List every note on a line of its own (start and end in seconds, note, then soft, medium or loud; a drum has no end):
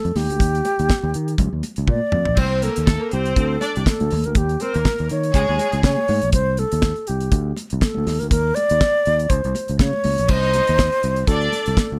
0.00 0.18 A4 medium
0.05 0.13 F2 medium
0.05 closed hi-hat soft
0.15 0.26 D#2 medium
0.15 1.64 G4 loud
0.15 snare soft
0.15 open hi-hat medium
0.15 high conga medium
0.30 0.38 D2 medium
0.30 closed hi-hat medium
0.39 0.60 D#2 loud
0.39 kick loud
0.39 closed hi-hat medium
0.39 muted conga medium
0.55 closed hi-hat soft
0.65 closed hi-hat medium
0.65 muted conga medium
0.79 0.88 D#2 medium
0.79 closed hi-hat medium
0.89 kick loud
0.89 snare loud
0.89 high conga medium
1.03 1.12 D#2 medium
1.14 1.34 D#3 medium
1.14 closed hi-hat medium
1.28 closed hi-hat soft
1.38 1.50 C#2 loud
1.38 kick loud
1.38 closed hi-hat medium
1.38 muted conga soft
1.38 low conga medium
1.53 1.61 D#2 medium
1.63 closed hi-hat medium
1.63 muted conga medium
1.76 1.86 C#2 medium
1.76 closed hi-hat soft
1.88 1.99 A#2 loud
1.88 2.41 D5 loud
1.88 kick loud
1.88 high tom medium
1.88 high conga medium
2.12 2.25 F2 medium
2.12 mid tom medium
2.12 high conga medium
2.25 2.36 A#1 medium
2.25 floor tom medium
2.36 2.68 C2 medium
2.36 2.48 C4 loud
2.36 2.48 C5 loud
2.36 2.65 C5 loud
2.36 kick loud
2.36 crash loud
2.36 muted conga medium
2.61 2.73 A#3 medium
2.61 3.14 A4 medium
2.61 2.73 A#4 medium
2.61 closed hi-hat medium
2.61 muted conga medium
2.76 2.97 D#2 medium
2.76 closed hi-hat medium
2.86 2.98 A3 medium
2.86 2.97 A4 medium
2.86 kick loud
2.86 snare loud
2.86 high conga medium
3.00 3.09 A#3 medium
3.00 3.09 A#4 medium
3.11 3.32 C2 loud
3.11 3.58 C4 loud
3.11 3.37 G4 medium
3.11 3.58 C5 loud
3.11 closed hi-hat medium
3.25 closed hi-hat soft
3.36 3.56 D2 loud
3.36 3.78 A4 medium
3.36 kick loud
3.36 closed hi-hat medium
3.60 3.81 D4 medium
3.60 3.81 D5 medium
3.60 closed hi-hat medium
3.60 muted conga medium
3.76 3.85 C2 medium
3.76 3.86 G4 medium
3.76 closed hi-hat soft
3.86 4.27 A4 loud
3.86 kick loud
3.86 snare loud
3.86 high conga medium
4.00 4.09 D2 medium
4.00 closed hi-hat soft
4.00 high conga medium
4.11 4.23 D#2 loud
4.11 open hi-hat medium
4.11 high conga medium
4.24 4.34 D2 medium
4.24 4.39 A#4 medium
4.24 closed hi-hat medium
4.35 4.55 D#2 loud
4.35 4.63 G4 medium
4.35 kick loud
4.35 closed hi-hat medium
4.35 muted conga medium
4.49 closed hi-hat soft
4.60 4.71 C4 medium
4.60 5.10 A#4 medium
4.60 4.71 C5 medium
4.60 closed hi-hat medium
4.60 muted conga medium
4.74 4.84 D#2 loud
4.74 5.07 A#3 medium
4.74 5.07 A#4 medium
4.74 closed hi-hat medium
4.85 kick loud
4.85 snare loud
4.85 high conga medium
4.98 5.08 D#2 loud
4.98 closed hi-hat soft
5.09 5.30 D#3 medium
5.09 5.81 C#5 loud
5.09 closed hi-hat medium
5.23 closed hi-hat soft
5.34 5.45 C#2 loud
5.34 6.04 G#3 loud
5.34 6.04 G#4 loud
5.34 kick loud
5.34 closed hi-hat medium
5.34 muted conga soft
5.49 5.57 D#2 medium
5.59 closed hi-hat medium
5.59 muted conga medium
5.72 5.82 C#2 medium
5.72 closed hi-hat soft
5.83 5.95 C#3 medium
5.83 6.30 C#5 loud
5.83 kick medium
5.83 snare loud
5.83 high conga medium
5.98 high conga medium
6.08 6.20 G#2 medium
6.08 open hi-hat medium
6.08 high conga medium
6.22 6.31 A#1 medium
6.22 closed hi-hat medium
6.32 6.63 C2 loud
6.32 6.61 C5 loud
6.32 kick loud
6.32 closed hi-hat loud
6.32 muted conga medium
6.57 7.09 A4 loud
6.57 closed hi-hat medium
6.57 muted conga medium
6.72 6.92 D#2 medium
6.72 closed hi-hat medium
6.82 kick loud
6.82 snare loud
6.82 high conga medium
6.96 closed hi-hat soft
7.07 7.28 C2 medium
7.07 7.55 G4 medium
7.07 closed hi-hat medium
7.20 closed hi-hat soft
7.32 7.51 D2 loud
7.32 kick loud
7.32 closed hi-hat medium
7.32 muted conga soft
7.56 closed hi-hat medium
7.56 muted conga medium
7.70 7.81 C2 medium
7.70 closed hi-hat medium
7.81 8.21 A4 medium
7.81 kick loud
7.81 snare loud
7.81 high conga medium
7.95 8.05 D2 medium
7.95 high conga medium
8.07 8.18 D#2 loud
8.07 snare soft
8.07 open hi-hat medium
8.07 high conga medium
8.20 8.30 D2 medium
8.20 8.30 A#4 medium
8.20 closed hi-hat medium
8.31 8.51 D#2 loud
8.31 8.56 A#4 loud
8.31 kick loud
8.31 closed hi-hat loud
8.31 muted conga medium
8.55 9.31 D5 loud
8.55 closed hi-hat medium
8.55 muted conga medium
8.69 8.79 D#2 loud
8.69 closed hi-hat medium
8.81 kick loud
8.81 snare loud
8.81 high conga medium
9.05 9.26 D#2 loud
9.05 closed hi-hat medium
9.19 closed hi-hat soft
9.29 9.41 C#2 loud
9.29 9.79 C5 loud
9.29 kick loud
9.29 closed hi-hat medium
9.29 muted conga soft
9.44 9.53 C2 medium
9.44 closed hi-hat soft
9.55 closed hi-hat medium
9.55 muted conga medium
9.68 9.78 C#2 medium
9.68 closed hi-hat medium
9.79 9.90 C#3 loud
9.79 10.32 C#5 loud
9.79 kick loud
9.79 snare loud
9.79 high conga medium
9.93 high conga medium
10.04 10.15 C#2 medium
10.04 open hi-hat medium
10.04 high conga medium
10.18 10.27 A#1 medium
10.18 closed hi-hat medium
10.28 10.59 C2 medium
10.28 11.01 D#4 medium
10.28 11.29 C5 loud
10.28 11.02 D#5 loud
10.28 kick loud
10.28 crash loud
10.28 muted conga medium
10.43 closed hi-hat soft
10.53 closed hi-hat medium
10.53 muted conga medium
10.67 10.88 D#2 loud
10.67 closed hi-hat medium
10.78 kick loud
10.78 snare loud
10.78 high conga medium
10.92 closed hi-hat soft
11.03 11.23 C2 medium
11.03 closed hi-hat medium
11.16 closed hi-hat medium
11.27 11.47 D2 loud
11.27 11.76 D4 medium
11.27 11.99 A4 loud
11.27 11.76 D5 loud
11.27 kick loud
11.27 closed hi-hat medium
11.41 closed hi-hat soft
11.52 closed hi-hat medium
11.52 muted conga medium
11.66 11.76 C2 medium
11.66 closed hi-hat soft
11.77 kick loud
11.77 snare loud
11.77 high conga medium
11.92 11.99 D2 medium